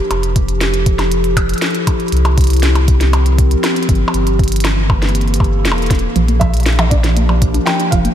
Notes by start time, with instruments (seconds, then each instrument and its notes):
Already playing: ambient pad F3 D4 G4 A#4
0.11 sub bass F1, closed hi-hat, percussion blips
0.23 closed hi-hat
0.33 ambient pad A4, kick, closed hi-hat
0.49 closed hi-hat
0.61 ambient pad E4, snare, closed hi-hat
0.74 closed hi-hat
0.86 kick, closed hi-hat
0.99 snare, closed hi-hat, percussion blips
1.12 closed hi-hat
1.24 closed hi-hat
1.37 kick, closed hi-hat, percussion blips
1.49 closed hi-hat
1.54 closed hi-hat
1.58 closed hi-hat
1.62 snare, closed hi-hat
1.66 closed hi-hat
1.70 closed hi-hat
1.75 closed hi-hat
1.87 kick, closed hi-hat, percussion blips
2.00 closed hi-hat
2.08 closed hi-hat
2.12 sub bass C2, closed hi-hat
2.17 closed hi-hat
2.22 ambient pad C4, closed hi-hat, percussion blips
2.38 kick, closed hi-hat
2.41 closed hi-hat
2.44 closed hi-hat
2.47 closed hi-hat
2.50 closed hi-hat
2.53 closed hi-hat
2.57 closed hi-hat
2.60 snare, closed hi-hat
2.63 closed hi-hat
2.75 closed hi-hat, percussion blips
2.88 kick, closed hi-hat
3.01 ambient pad A#4, snare, closed hi-hat
3.13 closed hi-hat, percussion blips
3.26 closed hi-hat
3.38 kick, closed hi-hat
3.51 closed hi-hat
3.64 snare, closed hi-hat, percussion blips
3.76 closed hi-hat
3.83 closed hi-hat
3.89 sub bass G1, kick, closed hi-hat
3.95 closed hi-hat
4.08 percussion blips
4.14 sub bass G1, ambient pad E3, closed hi-hat
4.27 closed hi-hat
4.33 ambient pad A#3
4.39 kick, closed hi-hat
4.44 closed hi-hat
4.48 closed hi-hat
4.52 closed hi-hat
4.56 closed hi-hat
4.60 closed hi-hat
4.65 snare, closed hi-hat, percussion blips
4.90 kick, percussion blips
5.02 ambient pad A4, snare, closed hi-hat
5.09 closed hi-hat
5.15 closed hi-hat
5.21 closed hi-hat
5.28 closed hi-hat
5.34 closed hi-hat
5.36 closed hi-hat
5.40 sub bass G1, kick, percussion blips
5.44 closed hi-hat
5.65 sub bass E1, snare, closed hi-hat
5.72 percussion blips
5.78 closed hi-hat
5.82 closed hi-hat
5.86 closed hi-hat
5.91 kick, snare, closed hi-hat
5.95 closed hi-hat
5.99 closed hi-hat
6.16 sub bass A#1, synth arpeggio sound F3, ambient pad F3, closed hi-hat
6.28 synth arpeggio sound A#3, closed hi-hat
6.37 synth arpeggio sound F3, ambient pad D4, felt piano E5, kick, closed hi-hat, percussion blips
6.54 closed hi-hat
6.57 closed hi-hat
6.60 closed hi-hat
6.63 synth arpeggio sound D4, snare, closed hi-hat
6.66 closed hi-hat
6.73 closed hi-hat
6.76 closed hi-hat
6.79 synth arpeggio sound F3, closed hi-hat, percussion blips
6.90 synth arpeggio sound D4, felt piano D5, kick, closed hi-hat
7.04 synth arpeggio sound F3, ambient pad A#4, snare, closed hi-hat
7.17 synth arpeggio sound A#3, closed hi-hat
7.29 synth arpeggio sound F3, percussion blips
7.42 kick, closed hi-hat
7.54 synth arpeggio sound D4, closed hi-hat
7.66 synth arpeggio sound F3, felt piano G5, snare, closed hi-hat, percussion blips
7.80 synth arpeggio sound D4, closed hi-hat
7.91 sub bass F1, synth arpeggio sound F3, felt piano F5, kick, closed hi-hat
8.05 synth arpeggio sound A#3, closed hi-hat